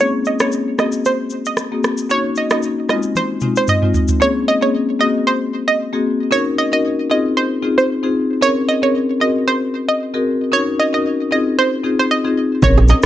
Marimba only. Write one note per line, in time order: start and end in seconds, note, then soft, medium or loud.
0.00 0.37 A#3 medium
0.00 0.37 C4 medium
0.00 0.37 C#4 medium
0.00 0.37 G#4 loud
0.40 0.76 A#3 medium
0.40 0.76 C4 medium
0.40 0.76 C#4 medium
0.40 0.76 G#4 medium
0.78 1.03 A#3 medium
0.78 1.03 C4 medium
0.78 1.03 F#4 medium
0.78 1.03 G#4 medium
1.72 1.91 A#3 medium
1.72 1.91 C4 medium
1.72 1.91 F#4 medium
1.72 1.91 G#4 medium
2.10 2.47 A#3 medium
2.10 2.47 C#4 medium
2.10 2.47 D#4 medium
2.10 2.48 F#4 loud
2.51 2.70 A#3 medium
2.51 2.70 C#4 medium
2.51 2.70 D#4 medium
2.51 2.70 F#4 medium
2.89 3.09 G#3 medium
2.89 3.09 C4 medium
2.89 3.10 D#4 medium
2.89 3.10 F4 medium
3.41 3.62 G#3 medium
3.41 3.62 C4 medium
3.41 3.62 D#4 medium
3.41 3.62 F4 medium
3.82 4.01 G#3 medium
3.82 4.01 C4 medium
3.82 4.02 D#4 medium
3.82 4.02 F4 medium
4.20 4.58 A#3 loud
4.20 4.58 C4 medium
4.20 4.58 C#4 medium
4.20 4.58 G#4 loud
4.61 4.97 A#3 medium
4.61 4.97 C4 medium
4.61 4.97 C#4 medium
4.61 4.97 G#4 medium
4.99 5.24 A#3 medium
4.99 5.24 C4 medium
4.99 5.24 F#4 medium
4.99 5.24 G#4 medium
5.93 6.12 A#3 medium
5.93 6.12 C4 medium
5.93 6.12 F#4 medium
5.93 6.12 G#4 medium
6.31 6.68 C#4 loud
6.31 6.68 D#4 medium
6.31 6.68 F#4 medium
6.31 6.69 A#4 loud
6.72 6.91 C#4 medium
6.72 6.91 D#4 medium
6.72 6.91 F#4 medium
6.72 6.91 A#4 medium
7.10 7.30 C4 medium
7.10 7.30 D#4 medium
7.10 7.30 F4 medium
7.10 7.31 G#4 medium
7.62 7.83 C4 medium
7.62 7.83 D#4 medium
7.62 7.83 F4 medium
7.62 7.83 G#4 medium
8.03 8.22 C4 medium
8.03 8.22 D#4 medium
8.03 8.23 F4 medium
8.03 8.23 G#4 medium
8.41 8.79 C4 loud
8.41 8.79 C#4 medium
8.41 8.79 G#4 medium
8.41 8.79 A#4 loud
8.82 9.18 C4 medium
8.82 9.18 C#4 medium
8.82 9.18 G#4 medium
8.82 9.18 A#4 medium
9.20 9.45 C4 medium
9.20 9.45 F#4 medium
9.20 9.45 G#4 medium
9.20 9.45 A#4 medium
10.14 10.33 C4 medium
10.14 10.33 F#4 medium
10.14 10.33 G#4 medium
10.14 10.33 A#4 medium
10.52 10.89 C#4 medium
10.52 10.89 D#4 medium
10.52 10.89 F#4 medium
10.52 10.90 A#4 loud
10.93 11.12 C#4 medium
10.93 11.12 D#4 medium
10.93 11.12 F#4 medium
10.93 11.12 A#4 medium
11.31 11.51 C4 medium
11.31 11.52 D#4 medium
11.31 11.52 F4 medium
11.31 11.52 G#4 medium
11.84 12.04 C4 medium
11.84 12.04 D#4 medium
11.84 12.04 F4 medium
11.84 12.04 G#4 medium
12.24 12.43 C4 medium
12.24 12.44 D#4 medium
12.24 12.44 F4 medium
12.24 12.44 G#4 medium
12.62 13.00 C4 medium
12.62 13.00 C#4 medium
12.62 13.00 G#4 medium
12.62 13.00 A#4 loud